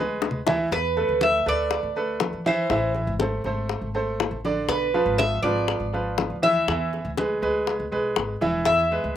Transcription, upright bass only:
0.00 0.68 D2 medium
0.71 1.07 E2 loud
1.09 1.44 D2 medium
1.46 1.82 D2 medium
1.83 2.31 D2 medium
2.33 2.68 E3 medium
2.70 3.06 A1 loud
3.07 3.43 G#1 medium
3.44 3.80 G#1 medium
3.81 4.29 G#1 medium
4.31 4.67 A1 medium
4.68 5.04 B1 medium
5.06 5.41 G#1 medium
5.43 5.79 G#1 medium
5.80 6.28 G#1 medium
6.30 6.66 D2 medium
6.68 7.03 E2 loud
7.05 7.40 D2 medium
7.42 7.78 D2 medium
7.80 7.91 D2 medium
7.92 8.14 B1 medium
8.17 8.39 G#1 medium
8.41 8.64 E1 medium
8.66 9.02 E2 medium
9.04 9.17 D2 medium

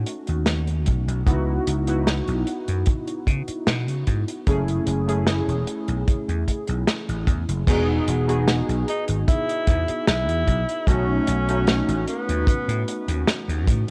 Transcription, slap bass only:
0.28 0.88 D#2 medium
0.88 1.03 B1 medium
1.08 1.23 B1 medium
1.27 1.58 C#2 loud
1.67 2.20 C#2 medium
2.28 2.43 B1 loud
2.68 2.83 F#2 medium
3.27 3.43 C#3 loud
3.48 muted slap bass stroke soft
3.68 3.88 B2 loud
3.88 4.03 C#3 medium
4.07 4.23 G#2 medium
4.47 4.78 F#1 loud
4.87 5.40 F#1 medium
5.48 5.63 E1 loud
5.88 6.03 B1 medium
6.28 6.43 E2 medium
6.69 6.83 B1 medium
7.09 7.27 A1 medium
7.27 7.43 E2 medium
7.49 7.63 F#1 medium
7.67 7.98 E1 loud
8.08 8.60 E1 medium
8.69 8.83 B1 loud
9.09 9.23 G#1 medium
9.68 9.83 E2 loud
9.89 muted slap bass stroke soft
10.08 10.28 B1 loud
10.28 10.43 E2 medium
10.48 10.63 B1 loud
10.87 11.18 B1 loud
11.28 11.81 B1 medium
11.88 12.03 A1 loud
12.29 12.43 D#2 medium
12.68 12.83 A2 medium
13.08 13.23 D#2 medium
13.48 13.67 D#2 medium
13.67 13.83 A2 loud

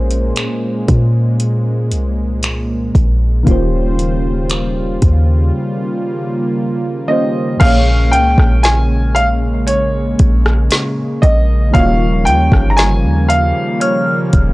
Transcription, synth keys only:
0.00 3.41 A#2 medium
0.00 3.42 A#3 medium
0.00 3.43 C#4 medium
0.00 3.44 G#4 medium
0.00 3.45 C5 medium
3.43 7.03 D#3 medium
3.43 7.04 A#3 medium
3.43 7.05 C#4 medium
3.48 7.05 F4 medium
3.48 7.06 G4 medium
3.48 7.07 C5 medium
7.07 7.60 D#3 medium
7.07 7.58 A#3 soft
7.07 7.60 C#4 medium
7.07 7.61 F4 medium
7.07 7.62 G4 soft
7.12 7.62 C5 medium
7.57 11.69 A#2 medium
7.57 11.70 A#3 medium
7.57 11.71 C#4 medium
7.63 11.72 G#4 medium
7.63 11.73 C#5 medium
11.71 14.53 D#3 medium
11.71 14.53 A#3 medium
11.71 14.53 C#4 medium
11.76 14.53 F4 medium
11.76 11.82 F#4 soft
11.76 14.53 C#5 medium
11.84 14.53 G3 medium

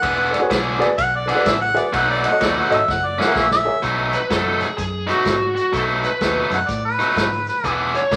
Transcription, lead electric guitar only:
4.14 4.31 B4 medium
4.31 4.62 A4 loud
4.62 4.76 G#4 medium
4.78 5.10 G#4 medium
5.09 5.54 F#4 medium
5.55 5.71 F#4 medium
5.74 5.82 A4 medium
6.05 6.48 B4 medium
7.95 8.16 C#5 loud

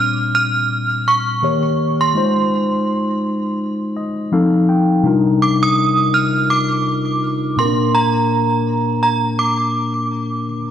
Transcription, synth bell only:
0.00 0.13 F6 loud
0.35 1.09 F6 loud
1.08 1.97 C#6 loud
2.01 3.05 C6 medium
5.42 5.61 D6 medium
5.63 6.15 D#6 loud
6.14 6.47 F6 loud
6.50 7.61 D6 loud
7.59 7.92 C6 medium
7.95 9.02 A#5 loud
9.03 9.17 A#5 medium
9.39 10.43 D6 medium

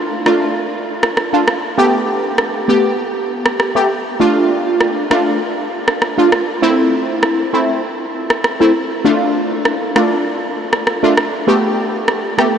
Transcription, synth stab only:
0.00 0.19 A3 medium
0.00 0.19 D4 medium
0.00 0.19 F4 loud
0.26 0.54 A3 medium
0.26 0.54 D4 medium
0.26 0.54 F4 medium
1.33 1.44 A3 medium
1.33 1.45 D4 medium
1.33 1.45 F4 medium
1.78 2.62 A3 medium
1.78 2.62 B3 medium
1.78 2.62 G4 loud
2.68 2.96 A3 medium
2.68 2.97 B3 medium
2.68 2.97 G4 medium
3.75 3.87 A3 medium
3.75 3.87 B3 medium
3.75 3.87 G4 medium
4.20 5.04 A3 medium
4.20 5.04 D4 medium
4.20 5.04 F4 loud
5.10 5.39 A3 medium
5.10 5.39 D4 medium
5.10 5.39 F4 medium
6.18 6.29 A3 medium
6.18 6.29 D4 medium
6.18 6.30 F4 medium
6.62 7.46 A3 medium
6.62 7.47 C4 medium
6.62 7.47 E4 loud
7.53 7.81 A3 medium
7.53 7.81 C4 medium
7.53 7.82 E4 medium
8.60 8.72 A3 medium
8.60 8.72 C4 medium
8.60 8.72 E4 medium
9.04 9.89 A3 medium
9.04 9.89 D4 medium
9.04 9.89 F4 loud
9.96 10.24 A3 medium
9.96 10.24 D4 medium
9.96 10.24 F4 medium
11.03 11.14 A3 medium
11.03 11.14 D4 medium
11.03 11.15 F4 medium
11.47 12.31 A3 medium
11.47 12.32 B3 medium
11.47 12.32 G4 loud
12.38 12.58 A3 medium
12.38 12.58 B3 medium
12.38 12.58 G4 medium

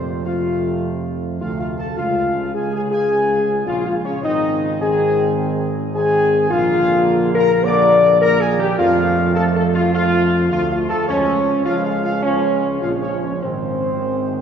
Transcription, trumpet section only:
0.00 0.22 C5 medium
0.25 1.08 F5 medium
1.41 1.59 F5 medium
1.60 1.69 F5 medium
1.79 1.97 A5 medium
1.97 2.50 F5 medium
2.55 2.73 G#5 medium
2.75 2.83 G#5 medium
2.93 3.63 G#5 loud
3.68 3.76 F5 medium
3.85 3.94 F5 medium
4.05 4.23 C#5 medium
4.23 4.78 D#5 medium
4.81 5.62 G#5 medium
5.96 6.48 G#5 loud
6.53 7.34 F5 loud
7.38 7.51 A#5 loud
7.66 8.19 D6 loud
8.23 8.41 A#5 loud
8.40 8.59 G#5 medium
8.61 8.78 G5 medium
8.79 9.32 F5 loud
9.35 9.44 A5 loud
9.54 9.63 A5 medium
9.74 9.92 F5 medium
9.94 10.48 F5 loud
10.50 10.69 F5 loud
10.70 10.79 F5 medium
10.89 11.07 A5 medium
11.07 11.62 C#5 loud
11.65 11.84 F5 loud
11.85 12.03 F5 medium
12.04 12.23 F5 medium
12.24 12.79 C#5 medium
12.82 12.91 F5 medium
13.01 13.21 C#5 medium
13.22 13.42 C#5 medium
13.42 14.41 C5 medium

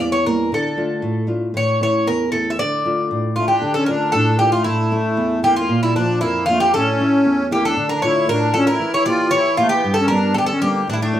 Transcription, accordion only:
3.37 3.49 A3 medium
3.51 3.75 D4 medium
3.77 3.88 C#4 medium
3.89 4.13 D4 medium
4.16 4.39 D4 medium
4.41 4.53 A#3 medium
4.53 4.64 A3 medium
4.65 5.40 A3 medium
5.45 5.56 A#3 medium
5.57 5.81 A#3 medium
5.83 5.95 G3 medium
5.97 6.21 F3 medium
6.22 6.46 A#3 medium
6.50 6.61 A3 medium
6.63 6.74 A#3 medium
6.76 7.48 C#4 medium
7.53 7.64 A#3 medium
7.66 7.89 D4 medium
7.92 8.03 D4 medium
8.06 8.28 E4 medium
8.33 8.55 D4 medium
8.57 8.68 C#4 medium
8.69 8.92 E4 medium
8.96 9.06 E4 medium
9.08 9.31 F4 medium
9.35 9.58 E4 medium
9.60 9.71 A3 medium
9.74 9.96 B3 medium
10.00 10.10 C#4 medium
10.12 10.35 D4 medium
10.37 10.42 D4 medium
10.41 10.47 B3 medium
10.51 10.62 C#4 medium
10.63 10.86 A#3 medium
10.88 10.94 A3 medium
10.93 11.00 G3 medium
11.02 11.20 A3 medium

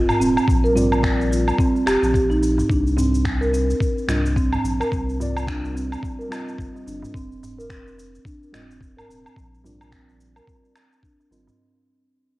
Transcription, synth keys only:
0.73 1.82 G3 medium
0.73 1.83 C4 medium
0.73 1.83 F4 medium
0.73 1.84 A#4 medium
0.77 1.84 D5 medium
4.07 4.18 G3 medium
4.07 4.18 C4 medium
4.07 4.18 F4 medium
4.07 4.19 A#4 medium
4.07 4.19 D#5 medium
5.18 6.27 G3 medium
5.18 6.28 C4 medium
5.18 6.28 F4 medium
5.18 6.28 A#4 medium
5.18 6.29 D5 medium
6.28 7.11 G3 medium
6.28 7.12 C4 medium
6.28 7.12 F4 medium
6.28 7.13 A#4 medium
6.28 7.13 D#5 medium
8.52 8.62 G3 medium
8.52 8.63 C4 medium
8.52 8.63 F4 medium
8.52 8.63 A#4 medium
8.52 8.63 D#5 medium
9.62 10.71 G3 medium
9.62 10.72 C4 medium
9.62 10.73 F4 medium
9.62 10.73 A#4 medium
9.66 10.73 D5 medium
11.30 11.57 G3 medium
11.30 11.57 C4 medium
11.30 11.57 F4 medium
11.30 11.57 A#4 medium
11.30 11.58 D#5 medium

